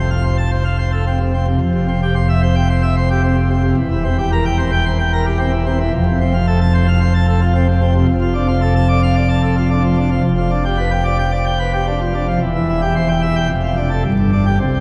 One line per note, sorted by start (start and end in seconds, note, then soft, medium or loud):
0.00 1.56 F1 medium
0.00 1.56 F2 medium
0.11 0.23 F5 medium
0.24 0.36 C5 medium
0.38 0.50 A5 medium
0.51 0.63 C5 medium
0.65 0.77 F5 medium
0.78 0.91 C5 medium
0.92 1.04 A4 medium
1.07 1.19 C4 medium
1.20 1.32 C3 medium
1.34 1.46 C4 medium
1.47 1.59 C3 medium
1.61 3.73 F1 medium
1.61 3.73 F2 medium
1.74 1.86 C3 medium
1.88 2.00 C4 medium
2.03 2.14 G4 medium
2.15 2.27 C5 medium
2.29 2.41 E5 medium
2.42 2.54 C5 medium
2.56 2.68 G5 medium
2.70 2.82 C5 medium
2.83 2.95 E5 medium
2.96 3.08 C5 medium
3.10 3.22 G4 medium
3.23 3.35 C4 medium
3.37 3.49 C3 medium
3.50 3.62 C4 medium
3.64 3.75 C3 medium
3.77 5.89 E1 medium
3.77 5.89 E2 medium
3.91 4.03 E3 medium
4.04 4.16 C4 medium
4.19 4.30 G4 medium
4.32 4.44 A#4 medium
4.45 4.57 G5 medium
4.59 4.70 C5 medium
4.72 4.84 G5 medium
4.86 4.97 C5 medium
4.99 5.11 G5 medium
5.13 5.25 A#4 medium
5.26 5.38 G4 medium
5.39 5.51 C4 medium
5.53 5.65 E3 medium
5.66 5.78 C4 medium
5.80 5.91 E3 medium
5.93 8.04 F1 medium
5.93 8.04 F2 medium
6.07 6.19 C3 medium
6.21 6.33 C4 medium
6.34 6.46 F4 medium
6.47 6.59 A4 medium
6.61 6.73 A5 loud
6.74 6.86 C5 medium
6.88 6.99 F5 medium
7.00 7.13 C5 medium
7.14 7.26 A5 medium
7.28 7.40 A4 medium
7.41 7.53 F4 medium
7.55 7.67 C4 medium
7.68 7.80 C3 medium
7.81 7.93 C4 medium
7.95 8.06 C3 medium
8.08 10.20 F1 medium
8.08 10.20 F2 medium
8.21 8.33 F3 medium
8.35 8.47 D4 medium
8.48 8.60 F4 medium
8.61 8.74 A4 medium
8.76 8.88 A5 loud
8.89 9.01 D5 medium
9.03 9.15 F5 medium
9.16 9.28 D5 medium
9.29 9.41 A5 medium
9.43 9.55 A4 medium
9.57 9.69 F4 medium
9.71 9.83 D4 medium
9.84 9.96 F3 medium
9.97 10.09 D4 medium
10.11 10.22 F3 medium
10.24 12.37 F1 medium
10.24 12.37 F2 medium
10.37 10.50 F3 medium
10.51 10.63 D4 medium
10.65 10.77 G4 medium
10.78 10.90 B4 medium
10.91 11.04 G5 medium
11.05 11.17 D5 medium
11.18 11.31 G5 medium
11.32 11.44 D5 medium
11.46 11.58 G5 medium
11.59 11.71 B4 medium
11.73 11.85 G4 medium
11.87 11.99 D4 medium
12.01 12.13 F3 medium
12.14 12.26 D4 medium
12.28 12.39 F3 medium
12.41 13.47 E1 medium
12.41 13.47 E2 medium
12.55 12.67 E3 medium
12.69 12.80 E4 medium
12.82 12.94 G4 medium
12.96 13.08 C5 medium
13.09 13.21 G5 medium
13.22 13.35 E5 medium
13.36 13.48 G5 medium
13.49 14.03 F1 medium
13.49 14.03 F2 medium
13.63 13.76 F3 medium
13.77 13.89 D4 medium
13.91 14.03 A4 medium
14.05 14.59 G1 medium
14.05 14.59 G2 medium
14.19 14.31 D3 soft
14.32 14.45 D4 medium
14.46 14.58 G4 medium
14.60 14.80 C2 medium
14.60 14.80 C3 medium
14.75 14.80 G3 soft